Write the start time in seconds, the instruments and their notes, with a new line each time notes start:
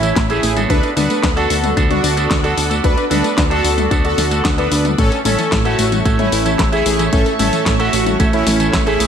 Already playing: analog synth bass A1, string machine A3 C#5 E5 B5, analog polysynth C#4 E4
0.03 synth arpeggio sound E3, clean electric guitar A3 C#4 E4 A4, closed hi-hat, tambourine
0.16 analog synth bass A1, synth arpeggio sound A3, kick, snare, clap, closed hi-hat, tambourine
0.30 clean electric guitar A3 C#4 E4 A4, analog polysynth E4 G#4, synth arpeggio sound A4, closed hi-hat, tambourine
0.43 analog synth bass A1, synth arpeggio sound A3, open hi-hat, tambourine
0.56 synth arpeggio sound E3, clean electric guitar B3 D4 F#4 A4, closed hi-hat, high tom, tambourine
0.70 analog synth bass D2, analog polysynth D4 B4, synth arpeggio sound D4, string machine A4 D5 F#5, kick, closed hi-hat, tambourine
0.83 synth arpeggio sound D5, closed hi-hat, tambourine
0.96 analog synth bass D2, clean electric guitar B3 D4 F#4 A4, analog polysynth D4 B4, synth arpeggio sound D4, open hi-hat, high tom, tambourine
1.10 synth arpeggio sound A3, closed hi-hat, tambourine
1.23 analog synth bass D2, synth arpeggio sound D4, kick, snare, clap, closed hi-hat, tambourine
1.37 clean electric guitar B3 D4 F#4 A4, analog polysynth F#4 A4, synth arpeggio sound D5, closed hi-hat, tambourine
1.50 analog synth bass D2, synth arpeggio sound D4, open hi-hat, tambourine
1.64 synth arpeggio sound A3, closed hi-hat, high tom, tambourine
1.77 analog synth bass D2, clean electric guitar B3 D4 F#4 A4, synth arpeggio sound D4, kick, closed hi-hat, tambourine
1.90 analog polysynth D4 F#4, synth arpeggio sound D5, closed hi-hat, high tom, tambourine
2.04 analog synth bass D2, synth arpeggio sound D4, open hi-hat, tambourine
2.17 synth arpeggio sound A3, clean electric guitar B3 D4 F#4 A4, closed hi-hat, tambourine
2.30 analog synth bass D2, synth arpeggio sound D4, kick, snare, clap, closed hi-hat, tambourine
2.43 clean electric guitar B3 D4 F#4 A4, analog polysynth F#4 A4, synth arpeggio sound D5, closed hi-hat, tambourine
2.57 analog synth bass D2, synth arpeggio sound D4, open hi-hat, tambourine
2.70 synth arpeggio sound A3, clean electric guitar B3 D4 F#4 A4, closed hi-hat, tambourine
2.84 analog synth bass D2, synth arpeggio sound D4, analog polysynth D4 B4, kick, closed hi-hat, tambourine
2.97 synth arpeggio sound D5, closed hi-hat, tambourine
3.10 analog synth bass D2, clean electric guitar B3 D4 F#4 A4, synth arpeggio sound D4, analog polysynth D4 B4, open hi-hat, high tom, tambourine
3.24 synth arpeggio sound A3, closed hi-hat, tambourine
3.37 analog synth bass D2, synth arpeggio sound D4, kick, snare, clap, closed hi-hat, tambourine
3.50 clean electric guitar B3 D4 F#4 A4, analog polysynth F#4 A4, synth arpeggio sound D5, closed hi-hat, tambourine
3.64 analog synth bass D2, synth arpeggio sound D4, open hi-hat, tambourine
3.78 synth arpeggio sound A3, closed hi-hat, high tom, tambourine
3.91 analog synth bass D2, clean electric guitar B3 D4 F#4 A4, synth arpeggio sound D4, kick, closed hi-hat, tambourine
4.05 analog polysynth F#4 A4, synth arpeggio sound D5, closed hi-hat, tambourine
4.18 analog synth bass D2, synth arpeggio sound D4, snare, open hi-hat, tambourine
4.31 synth arpeggio sound A3, clean electric guitar B3 D4 F#4 A4, closed hi-hat, tambourine
4.45 analog synth bass D2, synth arpeggio sound D4, kick, snare, clap, closed hi-hat, tambourine
4.58 clean electric guitar B3 D4 F#4 A4, analog polysynth D4 B4, synth arpeggio sound D5, closed hi-hat, tambourine
4.71 analog synth bass D2, synth arpeggio sound D4, open hi-hat, tambourine
4.85 synth arpeggio sound A3, closed hi-hat, high tom, tambourine
4.98 analog synth bass A1, synth arpeggio sound A3, string machine A3 C#5 E5 C#6, analog polysynth C#4 A4, kick, closed hi-hat, tambourine
5.12 synth arpeggio sound A4, closed hi-hat, tambourine
5.25 analog synth bass A1, synth arpeggio sound A3, clean electric guitar A3 C#4 E4 A4, analog polysynth C#4 A4, open hi-hat, high tom, tambourine
5.39 synth arpeggio sound E3, closed hi-hat, tambourine
5.52 analog synth bass A1, synth arpeggio sound A3, kick, snare, clap, closed hi-hat, tambourine
5.65 analog polysynth A3 F#4, clean electric guitar A3 C#4 E4 A4, synth arpeggio sound A4, closed hi-hat, tambourine
5.79 analog synth bass A1, synth arpeggio sound A3, open hi-hat, tambourine
5.92 synth arpeggio sound E3, closed hi-hat, high tom, tambourine
6.05 analog synth bass A1, clean electric guitar A3 C#4 E4 A4, synth arpeggio sound A3, kick, closed hi-hat, tambourine
6.19 analog polysynth C#4 E4, synth arpeggio sound A4, closed hi-hat, high tom, tambourine
6.32 analog synth bass A1, synth arpeggio sound A3, open hi-hat, tambourine
6.45 synth arpeggio sound E3, clean electric guitar A3 C#4 E4 A4, closed hi-hat, tambourine
6.59 analog synth bass A1, synth arpeggio sound A3, kick, snare, clap, closed hi-hat, tambourine
6.72 clean electric guitar A3 C#4 E4 A4, analog polysynth E4 G#4, synth arpeggio sound A4, closed hi-hat, tambourine
6.86 analog synth bass A1, synth arpeggio sound A3, open hi-hat, tambourine
6.99 synth arpeggio sound E3, clean electric guitar A3 C#4 E4 A4, closed hi-hat, tambourine
7.13 analog synth bass A1, synth arpeggio sound A3, analog polysynth C#4 A4, kick, closed hi-hat, tambourine
7.26 synth arpeggio sound A4, closed hi-hat, tambourine
7.39 analog synth bass A1, synth arpeggio sound A3, clean electric guitar A3 C#4 E4 A4, analog polysynth C#4 A4, open hi-hat, high tom, tambourine
7.53 synth arpeggio sound E3, closed hi-hat, tambourine
7.66 analog synth bass A1, synth arpeggio sound A3, kick, snare, clap, closed hi-hat, tambourine
7.80 analog polysynth A3 F#4, clean electric guitar A3 C#4 E4 A4, synth arpeggio sound A4, closed hi-hat, tambourine
7.93 analog synth bass A1, synth arpeggio sound A3, open hi-hat, tambourine
8.06 synth arpeggio sound E3, closed hi-hat, high tom, tambourine
8.19 analog synth bass A1, clean electric guitar A3 C#4 E4 A4, synth arpeggio sound A3, kick, closed hi-hat, tambourine
8.33 analog polysynth C#4 E4, synth arpeggio sound A4, closed hi-hat, tambourine
8.47 analog synth bass A1, synth arpeggio sound A3, snare, open hi-hat, tambourine
8.60 synth arpeggio sound E3, clean electric guitar A3 C#4 E4 A4, closed hi-hat, tambourine
8.73 analog synth bass A1, synth arpeggio sound A3, kick, snare, clap, closed hi-hat, tambourine
8.86 clean electric guitar A3 C#4 E4 A4, analog polysynth E4 G#4, synth arpeggio sound A4, closed hi-hat, tambourine
9.00 analog synth bass A1, synth arpeggio sound A3, open hi-hat, tambourine